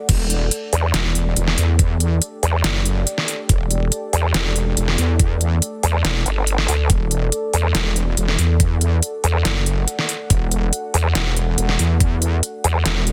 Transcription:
0.00 13.12 A4 medium
0.00 13.12 D5 loud
0.09 0.50 E1 loud
0.09 kick loud
0.09 closed hi-hat medium
0.09 crash medium
0.19 6.90 G5 medium
0.30 closed hi-hat medium
0.51 closed hi-hat medium
0.73 0.92 E2 loud
0.73 open hi-hat medium
0.94 1.35 E1 medium
0.94 snare loud
0.94 closed hi-hat medium
1.15 closed hi-hat medium
1.36 1.56 E1 loud
1.36 closed hi-hat medium
1.48 snare soft
1.58 2.20 E2 loud
1.58 open hi-hat loud
1.79 kick loud
1.79 closed hi-hat medium
2.00 closed hi-hat medium
2.22 closed hi-hat medium
2.43 2.63 E2 loud
2.43 open hi-hat medium
2.64 3.05 F#1 loud
2.64 snare loud
2.64 closed hi-hat medium
2.86 closed hi-hat medium
3.07 closed hi-hat medium
3.18 snare soft
3.28 open hi-hat medium
3.49 3.90 E1 loud
3.49 kick loud
3.49 closed hi-hat medium
3.71 closed hi-hat medium
3.92 closed hi-hat medium
4.13 4.33 E2 medium
4.13 open hi-hat medium
4.34 4.75 E1 loud
4.34 snare loud
4.34 closed hi-hat medium
4.56 closed hi-hat medium
4.77 4.97 E1 loud
4.77 closed hi-hat medium
4.88 snare soft
4.98 5.60 E2 loud
4.98 open hi-hat medium
5.20 kick loud
5.20 closed hi-hat medium
5.41 closed hi-hat medium
5.62 closed hi-hat medium
5.83 6.03 E2 loud
5.83 open hi-hat medium
6.05 6.24 E1 loud
6.05 snare loud
6.05 closed hi-hat medium
6.26 6.67 G1 loud
6.26 closed hi-hat medium
6.47 closed hi-hat medium
6.58 snare soft
6.68 6.88 D2 loud
6.68 open hi-hat medium
6.90 7.31 E1 loud
6.90 kick loud
6.90 closed hi-hat medium
7.11 closed hi-hat medium
7.32 closed hi-hat medium
7.47 13.12 F#5 medium
7.54 7.73 E2 medium
7.54 open hi-hat medium
7.75 8.16 E1 loud
7.75 snare loud
7.75 closed hi-hat medium
7.96 closed hi-hat soft
8.17 8.37 E1 loud
8.17 closed hi-hat medium
8.28 snare soft
8.39 9.01 E2 loud
8.39 open hi-hat medium
8.60 kick loud
8.60 closed hi-hat medium
8.81 closed hi-hat medium
9.03 closed hi-hat medium
9.24 9.43 E2 loud
9.24 open hi-hat medium
9.45 9.86 F#1 loud
9.45 snare loud
9.45 closed hi-hat medium
9.66 closed hi-hat medium
9.88 closed hi-hat medium
9.99 snare soft
10.09 open hi-hat medium
10.30 10.71 E1 loud
10.30 kick loud
10.30 closed hi-hat medium
10.51 closed hi-hat medium
10.73 closed hi-hat medium
10.94 11.14 E2 loud
10.94 open hi-hat medium
11.15 11.56 E1 loud
11.15 snare loud
11.15 closed hi-hat medium
11.37 closed hi-hat medium
11.58 11.78 E1 loud
11.58 closed hi-hat medium
11.69 snare soft
11.79 12.41 E2 medium
11.79 open hi-hat medium
12.00 kick loud
12.00 closed hi-hat medium
12.22 closed hi-hat medium
12.43 closed hi-hat medium
12.64 12.84 E2 loud
12.64 open hi-hat medium
12.86 13.12 E1 loud
12.86 snare loud
12.86 closed hi-hat medium
13.07 closed hi-hat medium

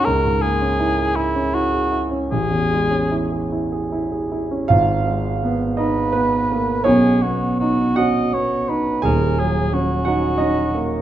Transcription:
0.05 2.28 C#2 medium
0.05 0.43 A#4 loud
0.25 0.54 G#2 soft
0.42 0.73 A#3 medium
0.42 1.17 G#4 medium
0.61 0.91 C#4 soft
0.80 1.09 E4 medium
0.98 1.28 G#4 medium
1.16 1.56 E4 medium
1.16 1.47 E4 medium
1.35 1.66 C#4 medium
1.54 1.85 E4 soft
1.54 2.04 F#4 medium
1.74 2.04 G#4 soft
1.92 2.24 E4 medium
2.11 2.31 C#4 medium
2.31 4.66 A1 medium
2.31 3.48 G#4 medium
2.51 2.83 E2 soft
2.72 3.04 G#3 soft
2.91 3.23 C#4 medium
3.11 3.44 E4 medium
3.32 3.64 G#4 soft
3.52 3.84 E4 medium
3.72 4.04 G#4 medium
3.92 4.24 E4 soft
4.12 4.44 G#4 soft
4.32 4.62 E4 medium
4.51 4.70 C#4 soft
4.68 6.81 G#1 medium
4.68 6.82 G#2 medium
4.68 5.75 F4 medium
4.68 5.78 F5 loud
5.07 5.65 G#3 medium
5.43 6.01 B3 medium
5.77 6.12 D#4 medium
5.77 6.86 B4 medium
5.77 6.14 D#5 medium
6.12 6.81 B3 medium
6.12 6.84 B4 medium
6.52 6.86 A#3 medium
6.84 9.00 B1 medium
6.84 9.00 B2 medium
6.84 7.93 C#4 medium
6.84 7.23 G#4 medium
6.84 7.96 C#5 medium
7.22 7.83 B3 medium
7.22 7.59 F#4 medium
7.60 8.19 D#4 medium
7.60 7.98 F#4 medium
7.96 8.55 C#4 medium
7.96 9.00 F#4 medium
7.96 8.35 D#5 medium
7.96 9.03 F#5 medium
8.33 8.90 B3 soft
8.33 8.71 C#5 medium
8.69 9.04 D#4 medium
8.69 9.04 B4 medium
9.02 11.02 D#1 medium
9.02 11.02 D#2 medium
9.02 10.02 G#4 medium
9.02 9.41 A#4 medium
9.02 10.06 G#5 medium
9.39 9.93 F#3 medium
9.39 9.75 G#4 medium
9.73 10.27 C#4 medium
9.73 11.02 F#4 medium
10.05 10.38 D#4 medium
10.05 10.37 F#4 medium
10.05 10.39 F#5 medium
10.38 10.94 C#4 soft
10.38 11.02 D#4 medium
10.38 11.02 D#5 medium
10.74 11.02 A#3 medium

